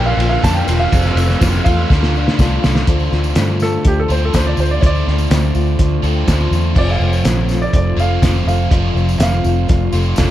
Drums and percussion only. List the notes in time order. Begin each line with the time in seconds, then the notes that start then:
0.20 ride, tambourine
0.44 kick, snare, ride, tambourine
0.68 ride, tambourine
0.92 kick, ride, tambourine
1.05 snare
1.17 ride, tambourine
1.30 snare
1.41 kick, snare, ride, tambourine
1.54 snare
1.66 kick, ride, tambourine
1.90 kick, snare, tambourine
2.03 snare
2.15 tambourine
2.28 snare
2.39 kick, snare, tambourine
2.64 snare, tambourine
2.75 snare
2.87 kick, closed hi-hat
2.99 tambourine
3.12 snare, tambourine
3.24 tambourine
3.35 snare, closed hi-hat, tambourine
3.60 snare, tambourine
3.85 kick, closed hi-hat, tambourine
4.10 tambourine
4.34 kick, snare, closed hi-hat, tambourine
4.45 tambourine
4.57 tambourine
4.83 kick, closed hi-hat
4.95 tambourine
5.08 snare
5.18 tambourine
5.31 snare, closed hi-hat, tambourine
5.55 tambourine
5.67 tambourine
5.79 kick, closed hi-hat, tambourine
6.04 tambourine
6.28 kick, snare, closed hi-hat, tambourine
6.40 tambourine
6.53 tambourine
6.76 kick, crash
6.89 tambourine
7.01 tambourine
7.13 tambourine
7.25 snare, closed hi-hat, tambourine
7.49 snare, tambourine
7.62 tambourine
7.73 kick, closed hi-hat, tambourine
7.99 tambourine
8.22 kick, snare, closed hi-hat, tambourine
8.37 tambourine
8.48 tambourine
8.71 kick, closed hi-hat, tambourine
8.97 tambourine
9.09 tambourine
9.20 snare, closed hi-hat, tambourine
9.34 tambourine
9.44 tambourine
9.68 kick, closed hi-hat, tambourine
9.92 tambourine
10.05 tambourine
10.16 kick, snare, closed hi-hat, tambourine